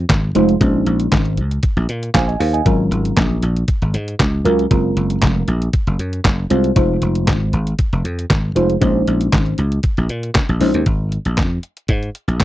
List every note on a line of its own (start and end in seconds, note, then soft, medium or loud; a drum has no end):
0.10 0.29 G#1 loud
0.10 kick loud
0.10 snare loud
0.10 clap medium
0.10 closed hi-hat medium
0.35 0.55 F1 loud
0.35 0.55 G#3 loud
0.35 0.55 D#4 medium
0.35 0.55 F4 medium
0.35 0.55 C5 loud
0.35 closed hi-hat loud
0.49 closed hi-hat soft
0.60 0.81 A#1 loud
0.60 1.38 G#3 medium
0.60 1.39 C#4 medium
0.60 1.39 D#4 medium
0.60 1.39 C5 medium
0.60 kick loud
0.60 closed hi-hat medium
0.86 1.06 A#1 loud
0.86 closed hi-hat medium
1.00 closed hi-hat medium
1.12 1.39 G#1 loud
1.12 kick loud
1.12 snare loud
1.12 clap medium
1.12 closed hi-hat medium
1.25 closed hi-hat soft
1.37 1.58 C#2 medium
1.37 closed hi-hat medium
1.51 closed hi-hat medium
1.63 kick loud
1.63 closed hi-hat medium
1.77 1.86 A#1 medium
1.77 closed hi-hat soft
1.89 2.09 A#2 medium
1.89 closed hi-hat medium
2.03 closed hi-hat medium
2.14 2.35 A#1 medium
2.14 2.28 C5 medium
2.14 2.27 F5 medium
2.14 2.26 G#5 medium
2.14 kick loud
2.14 snare loud
2.14 clap loud
2.14 closed hi-hat loud
2.28 2.40 D#5 medium
2.28 2.39 G#5 medium
2.28 closed hi-hat soft
2.40 2.60 D#2 loud
2.40 2.53 C5 medium
2.40 2.64 F5 medium
2.40 open hi-hat loud
2.53 2.78 D#5 medium
2.53 2.78 G#5 medium
2.53 closed hi-hat medium
2.65 2.86 G#1 loud
2.65 3.43 F#3 medium
2.65 3.43 C#4 medium
2.65 3.44 F4 medium
2.65 3.44 A#4 medium
2.65 kick loud
2.65 closed hi-hat medium
2.91 3.11 G#1 loud
2.91 closed hi-hat medium
3.05 closed hi-hat medium
3.17 3.37 A#1 medium
3.17 kick loud
3.17 snare loud
3.17 clap medium
3.17 closed hi-hat medium
3.43 3.63 A#1 medium
3.43 closed hi-hat medium
3.57 closed hi-hat medium
3.68 kick loud
3.68 closed hi-hat medium
3.82 3.95 G#1 medium
3.82 closed hi-hat soft
3.94 4.14 G#2 loud
3.94 closed hi-hat medium
4.08 closed hi-hat medium
4.20 4.40 C#2 medium
4.20 kick loud
4.20 snare loud
4.20 clap loud
4.20 closed hi-hat medium
4.45 4.65 C#2 medium
4.45 4.65 F#3 loud
4.45 4.65 C#4 medium
4.45 4.65 F4 medium
4.45 4.65 A#4 loud
4.45 closed hi-hat medium
4.59 closed hi-hat soft
4.70 4.91 F#1 loud
4.70 5.49 G#3 medium
4.70 5.49 C4 medium
4.70 5.49 F4 medium
4.70 5.49 A#4 medium
4.70 kick loud
4.70 closed hi-hat loud
4.96 5.17 F#1 loud
4.96 closed hi-hat medium
5.10 closed hi-hat medium
5.22 5.42 F1 loud
5.22 kick loud
5.22 snare loud
5.22 clap medium
5.22 closed hi-hat medium
5.48 5.68 A#1 medium
5.48 closed hi-hat medium
5.62 closed hi-hat medium
5.73 kick loud
5.73 closed hi-hat medium
5.87 5.96 F#1 loud
5.87 closed hi-hat soft
5.99 6.19 F#2 medium
5.99 closed hi-hat medium
6.13 closed hi-hat medium
6.25 6.45 F#1 loud
6.25 kick loud
6.25 snare loud
6.25 clap loud
6.25 closed hi-hat medium
6.50 6.71 C2 medium
6.50 6.70 G#3 medium
6.50 6.70 C4 medium
6.50 6.70 F4 medium
6.50 6.71 C5 loud
6.50 closed hi-hat loud
6.64 closed hi-hat medium
6.75 6.96 F1 loud
6.75 7.54 G#3 medium
6.75 7.54 D#4 medium
6.75 7.54 F4 medium
6.75 7.54 C5 medium
6.75 kick loud
6.75 closed hi-hat loud
7.02 7.28 F1 loud
7.02 closed hi-hat medium
7.15 closed hi-hat medium
7.27 7.48 G#1 medium
7.27 kick loud
7.27 snare loud
7.27 clap medium
7.27 closed hi-hat loud
7.53 7.73 G#1 medium
7.53 closed hi-hat medium
7.67 closed hi-hat medium
7.79 kick loud
7.79 closed hi-hat medium
7.93 8.02 F1 loud
7.93 closed hi-hat soft
8.04 8.24 F2 medium
8.04 closed hi-hat medium
8.19 closed hi-hat medium
8.30 8.50 G#1 loud
8.30 kick loud
8.30 snare loud
8.30 clap medium
8.30 closed hi-hat medium
8.55 8.76 F1 medium
8.55 8.75 G#3 medium
8.55 8.75 D#4 medium
8.55 8.76 F4 medium
8.55 8.76 C5 loud
8.55 closed hi-hat medium
8.70 closed hi-hat soft
8.81 9.01 A#1 loud
8.81 9.59 G#3 medium
8.81 9.59 C#4 medium
8.81 9.59 D#4 medium
8.81 9.59 C5 medium
8.81 kick loud
8.81 closed hi-hat medium
9.07 9.27 A#1 loud
9.07 closed hi-hat medium
9.21 closed hi-hat medium
9.32 9.53 G#1 loud
9.32 kick loud
9.32 snare loud
9.32 clap medium
9.32 closed hi-hat medium
9.46 closed hi-hat soft
9.58 9.78 C#2 medium
9.58 closed hi-hat medium
9.72 closed hi-hat medium
9.83 kick loud
9.83 closed hi-hat medium
9.97 10.07 A#1 medium
9.97 closed hi-hat soft
10.09 10.29 A#2 medium
10.09 closed hi-hat medium
10.23 closed hi-hat medium
10.35 kick loud
10.35 snare loud
10.35 clap medium
10.35 closed hi-hat medium
10.49 10.58 A#1 medium
10.49 closed hi-hat soft
10.60 10.71 A#1 loud
10.60 10.80 G#3 medium
10.60 10.81 C#4 medium
10.60 10.81 D#4 medium
10.60 10.81 C5 loud
10.60 open hi-hat loud
10.74 10.84 D#2 medium
10.74 closed hi-hat medium
10.86 11.17 G#1 loud
10.86 kick loud
10.86 closed hi-hat medium
11.12 closed hi-hat medium
11.25 11.39 A#1 medium
11.25 closed hi-hat medium
11.37 11.58 F2 medium
11.37 kick loud
11.37 snare medium
11.37 clap medium
11.37 closed hi-hat medium
11.63 closed hi-hat medium
11.77 closed hi-hat medium
11.88 12.09 G#2 loud
11.88 kick medium
11.88 closed hi-hat medium
12.03 closed hi-hat soft
12.15 closed hi-hat medium
12.28 12.40 A#1 medium
12.28 closed hi-hat medium
12.40 12.44 C#2 medium
12.40 kick loud
12.40 snare loud
12.40 clap medium
12.40 closed hi-hat medium